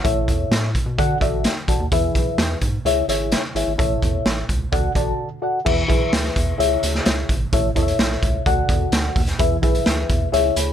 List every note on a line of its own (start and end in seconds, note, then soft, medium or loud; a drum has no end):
0.04 0.30 A1 medium
0.04 0.71 A2 medium
0.04 0.69 E4 medium
0.04 0.69 A4 medium
0.04 0.69 C#5 medium
0.04 0.69 E5 loud
0.04 kick loud
0.04 closed hi-hat medium
0.28 0.46 E2 medium
0.28 kick medium
0.28 closed hi-hat medium
0.51 0.77 A2 medium
0.51 snare loud
0.51 closed hi-hat medium
0.64 snare soft
0.75 kick medium
0.75 closed hi-hat medium
0.86 1.00 B2 medium
0.98 1.16 D3 loud
0.98 1.64 D3 medium
0.98 1.17 F#4 medium
0.98 1.17 A4 medium
0.98 1.17 D5 medium
0.98 1.17 F#5 loud
0.98 kick medium
0.98 closed hi-hat medium
1.21 1.48 A1 medium
1.21 1.53 F#4 medium
1.21 1.54 A4 medium
1.21 1.54 D5 medium
1.21 1.54 E5 medium
1.21 kick medium
1.21 closed hi-hat medium
1.44 snare loud
1.44 closed hi-hat medium
1.68 1.77 A1 medium
1.68 1.84 F#4 medium
1.68 1.84 A4 medium
1.68 1.85 D5 medium
1.68 1.85 A5 medium
1.68 kick medium
1.68 closed hi-hat medium
1.80 1.89 D#2 loud
1.92 2.09 E2 loud
1.92 2.58 E3 medium
1.92 2.56 E4 medium
1.92 2.56 G#4 medium
1.92 2.57 B4 medium
1.92 2.57 E5 loud
1.92 kick loud
1.92 closed hi-hat medium
2.15 2.33 B1 medium
2.15 kick medium
2.15 closed hi-hat medium
2.38 2.56 E2 loud
2.38 snare loud
2.38 closed hi-hat medium
2.61 2.79 G#2 medium
2.61 kick medium
2.61 closed hi-hat medium
2.85 3.03 C#2 medium
2.85 3.52 C#3 medium
2.85 3.04 E4 medium
2.85 3.04 G#4 medium
2.85 3.04 C#5 medium
2.85 3.05 E5 loud
2.85 closed hi-hat medium
3.08 3.35 G#1 medium
3.08 3.41 E4 medium
3.08 3.41 G#4 medium
3.08 3.41 C#5 medium
3.08 3.42 E5 medium
3.08 closed hi-hat medium
3.32 snare loud
3.32 closed hi-hat medium
3.55 3.64 G#1 loud
3.55 3.71 E4 medium
3.55 3.72 G#4 medium
3.55 3.72 C#5 medium
3.55 3.72 E5 medium
3.55 closed hi-hat medium
3.67 3.76 G#1 medium
3.78 3.96 A1 loud
3.78 4.45 A2 medium
3.78 4.43 E4 medium
3.78 4.43 A4 medium
3.78 4.43 C#5 medium
3.78 4.44 E5 medium
3.78 kick loud
3.78 closed hi-hat medium
4.02 4.20 E2 medium
4.02 kick medium
4.02 closed hi-hat medium
4.26 4.43 A1 medium
4.26 snare loud
4.26 closed hi-hat medium
4.49 4.67 C#2 medium
4.49 kick medium
4.49 closed hi-hat medium
4.72 4.90 D2 medium
4.72 5.39 D3 medium
4.72 4.91 F#4 loud
4.72 4.91 A4 medium
4.72 4.91 D5 medium
4.72 4.91 F#5 loud
4.72 kick loud
4.72 closed hi-hat medium
4.95 5.13 A1 medium
4.95 5.28 F#4 medium
4.95 5.28 A4 medium
4.95 5.28 D5 medium
4.95 5.28 A5 loud
4.95 kick medium
4.95 closed hi-hat medium
5.42 5.58 F#4 medium
5.42 5.58 A4 medium
5.42 5.59 D5 medium
5.42 5.59 F#5 medium
5.65 5.84 E2 loud
5.65 6.32 E3 medium
5.65 5.82 E4 medium
5.65 5.82 G#4 medium
5.65 5.82 B4 medium
5.65 5.82 E5 medium
5.65 kick loud
5.65 crash medium
5.88 6.07 B1 medium
5.88 6.53 E4 medium
5.88 6.53 G#4 medium
5.88 6.54 B4 medium
5.88 6.54 E5 medium
5.88 kick medium
5.88 closed hi-hat medium
6.13 6.30 D2 medium
6.13 snare loud
6.13 closed hi-hat medium
6.25 snare soft
6.36 6.54 E2 medium
6.36 kick medium
6.36 closed hi-hat medium
6.58 6.77 C#2 medium
6.58 7.25 C#3 medium
6.58 7.34 E4 medium
6.58 7.34 G#4 medium
6.58 7.34 C#5 medium
6.58 7.34 E5 loud
6.58 closed hi-hat medium
6.83 7.01 D2 medium
6.83 closed hi-hat medium
6.95 snare soft
7.06 7.24 C#2 medium
7.06 snare loud
7.06 closed hi-hat medium
7.29 7.47 G#1 medium
7.29 kick medium
7.29 closed hi-hat medium
7.53 7.70 A1 loud
7.53 8.19 A2 medium
7.53 7.69 E4 medium
7.53 7.69 A4 medium
7.53 7.69 C#5 medium
7.53 7.70 E5 loud
7.53 kick loud
7.53 closed hi-hat medium
7.75 7.94 E2 medium
7.75 8.40 E4 medium
7.75 8.41 A4 medium
7.75 8.41 C#5 medium
7.75 7.82 D#5 medium
7.75 kick medium
7.75 closed hi-hat medium
7.83 8.44 E5 medium
7.88 closed hi-hat medium
7.99 8.17 B1 loud
7.99 snare loud
7.99 closed hi-hat medium
8.11 snare soft
8.22 8.40 C#2 medium
8.22 kick medium
8.22 closed hi-hat medium
8.46 8.64 D2 loud
8.46 9.13 D3 medium
8.46 9.21 F#4 medium
8.46 9.21 A4 medium
8.46 9.21 D5 medium
8.46 9.22 F#5 loud
8.46 kick loud
8.46 closed hi-hat medium
8.69 8.87 E2 medium
8.69 kick medium
8.69 closed hi-hat medium
8.92 9.10 D2 loud
8.92 snare loud
8.92 closed hi-hat medium
9.16 9.34 D#2 medium
9.16 kick medium
9.16 open hi-hat medium
9.27 snare soft
9.27 closed hi-hat soft
9.39 9.57 E2 loud
9.39 10.06 E3 medium
9.39 9.55 E4 medium
9.39 9.56 G#4 medium
9.39 9.56 B4 medium
9.39 9.56 E5 loud
9.39 kick loud
9.39 closed hi-hat medium
9.62 9.81 B1 medium
9.62 10.27 E4 medium
9.62 10.28 G#4 medium
9.62 10.28 B4 medium
9.62 10.28 E5 loud
9.62 kick medium
9.62 closed hi-hat medium
9.75 closed hi-hat medium
9.86 10.05 D2 loud
9.86 snare loud
9.86 closed hi-hat medium
10.09 10.27 E2 medium
10.09 kick medium
10.09 closed hi-hat medium
10.32 10.51 C#2 medium
10.32 10.73 C#3 medium
10.32 10.73 E4 medium
10.32 10.73 G#4 medium
10.32 10.73 C#5 medium
10.32 10.57 E5 loud
10.32 closed hi-hat medium
10.56 10.73 D2 medium
10.56 10.73 G#5 medium
10.56 10.73 B5 medium
10.56 closed hi-hat medium